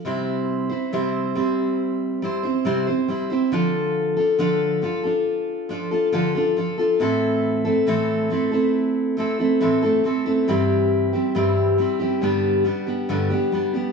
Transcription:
X:1
M:4/4
L:1/16
Q:1/4=69
K:C
V:1 name="Steel-string acoustic guitar"
[C,G,CEc]3 [CEc] [C,G,CEc]2 [G,CEc]4 [G,CEc] [CEc] [C,G,CEc] [CEc] [G,CEc] [CEc] | [D,F,DFA]3 [DFA] [D,F,DFA]2 [F,DFA] [DFA]3 [F,DFA] [DFA] [D,F,DFA] [DFA] [F,DFA] [DFA] | [A,,E,A,CEA]3 [A,CEA] [A,,E,A,CEA]2 [A,CEA] [A,CEA]3 [A,CEA] [A,CEA] [A,,E,A,CEA] [A,CEA] [A,CEA] [A,CEA] | [G,,E,G,CEG]3 [G,CEG] [G,,E,G,CEG]2 [G,CEG] [G,CEG] [G,,D,G,B,DG]2 [G,B,DG] [G,B,DG] [G,,D,G,B,DG] [G,B,DG] [G,B,DG] [G,B,DG] |]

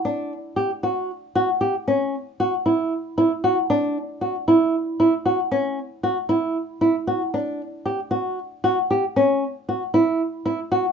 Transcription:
X:1
M:7/8
L:1/8
Q:1/4=115
K:Glyd
V:1 name="Nylon-string guitar"
D2 G F2 F G | C2 F E2 E F | D2 F E2 E F | C2 F E2 E F |
D2 G F2 F G | C2 F E2 E F |]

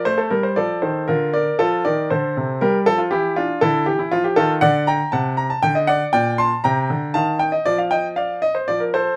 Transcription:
X:1
M:3/4
L:1/16
Q:1/4=118
K:Eblyd
V:1 name="Grand piano"
c A B c [Ad]2 [Ac]2 [FB]2 [Bd]2 | [FA]2 [Bd]2 [Ac]4 [GB]2 A F | [=EG]2 [DF]2 [EA]2 G E F G [FA]2 | [d^f]2 [gb]2 [fa]2 b a g e [df]2 |
[dg]2 [ac']2 [gb]4 [fa]2 g e | d f [eg]2 [df]2 e c d B [Ac]2 |]
V:2 name="Grand piano" clef=bass
A,2 G,2 F,2 E,2 D,4 | F,2 E,2 D,2 C,2 G,2 F,2 | =E,4 D,2 E,2 F,2 _E,2 | D,4 C,4 D,4 |
B,,4 C,2 D,2 E,4 | F,8 F,4 |]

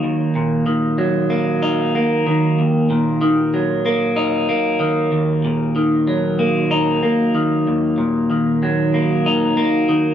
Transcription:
X:1
M:4/4
L:1/8
Q:1/4=94
K:Ebm
V:1 name="Clean electric guitar" clef=bass
[E,,E,B,E] B,, E, G, B, E B, E, | E,, B,, E, G, B, E B, E, | E,, B,, E, G, B, E B, E, | E,, B,, E, G, B, E B, E, |]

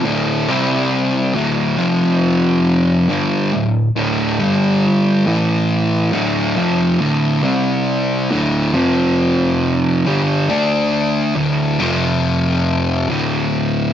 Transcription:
X:1
M:4/4
L:1/8
Q:1/4=69
K:Dm
V:1 name="Distorted electric guitar" clef=bass
[D,,A,,D,] [C,G,C]2 [D,,A,,D,] [F,,C,F,]3 [G,,D,G,] | [D,,A,,] [D,,A,,D,] [G,,D,G,]2 [A,,E,A,]2 [D,,A,,D,] [F,,C,F,] | [D,,A,,D,] [C,G,C]2 [D,,A,,D,] [F,,C,F,]3 [G,,D,G,] | [D,A,D]2 [D,,A,,D,] [F,,C,F,]3 [D,,A,,D,]2 |]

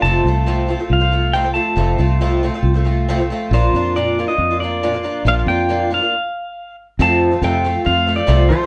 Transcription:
X:1
M:4/4
L:1/16
Q:1/4=138
K:F
V:1 name="Pedal steel guitar"
a8 f4 g2 a2- | a6 z8 z2 | c4 d3 _e3 d6 | f2 g4 f8 z2 |
a4 g4 f3 d3 c2 |]
V:2 name="Twelve-string acoustic guitar"
[F,,C,F,A,CF]2 [F,A,CF]2 [F,,C,F,A,CF]2 [F,A,CF] [F,A,CF]2 [F,A,CF] [F,A,CF]2 [F,,C,F,A,CF] [F,A,CF] [F,A,CF]2 | [F,,C,F,A,CF]2 [F,A,CF]2 [F,,C,F,A,CF]2 [F,A,CF] [F,A,CF]2 [F,A,CF] [F,A,CF]2 [F,,C,F,A,CF] [F,A,CF] [F,A,CF]2 | [B,,F,B,DF]2 [F,B,DF]2 [B,,F,B,DF]2 [F,B,DF] [B,DF]2 [B,DF] [F,B,DF]2 [B,,F,B,DF] [B,DF] [F,B,DF]2 | [B,,F,B,DF]2 [F,B,DF]2 [B,,F,B,DF]2 [F,B,DF] [B,DF] z8 |
[F,,C,F,A,CF]3 [F,A,CF] [F,,C,F,A,CF]2 [F,A,CF]2 [F,A,CF]2 [F,A,CF] [F,A,CF] [F,,C,F,A,CF]2 [F,A,CF] F |]
V:3 name="Fingered electric bass" clef=bass
F,,,2 C,,6 C,,8 | F,,,2 C,,6 C,,8 | B,,,2 F,,6 F,,8 | B,,,2 F,,6 z8 |
F,,4 F,,4 F,,4 C,,2 F,2 |]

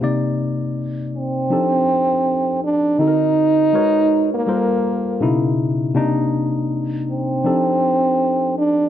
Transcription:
X:1
M:4/4
L:1/16
Q:"Swing 16ths" 1/4=81
K:Cdor
V:1 name="Tine electric piano"
[C,B,Ed]8 [F,CDEGA]8 | [D,CE^FAB]4 [_A,E_GB_c_d]4 [=G,=F=AB=c]4 [=B,,^C,^D=E]4 | [C,B,DE]8 [F,CDEGA]8 |]
V:2 name="French horn"
z6 C8 D2 | E6- E B,6- B, z2 | z6 C8 D2 |]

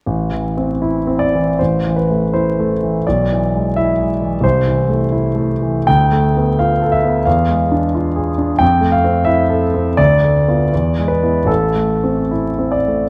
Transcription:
X:1
M:2/4
L:1/8
Q:1/4=83
K:Am
V:1 name="Grand piano"
z3 d | c B c2 | d2 e z | c4 |
g2 f e | f4 | g f e z | d3 B |
A2 z d |]
V:2 name="Grand piano"
(3A,,, E, C (3E C E, | (3A,,, E, A, (3E A, E, | (3B,,, E, ^G, (3E G, E, | (3C,, E, A, (3E A, E, |
(3D,, A, B, (3F A B, | (3E,, ^G, D (3F ^G D | (3F,, A, C (3E A C | (3D,, A, [B,F] (3E,, ^G, [B,E] |
(3A,,, A, C (3E C A, |]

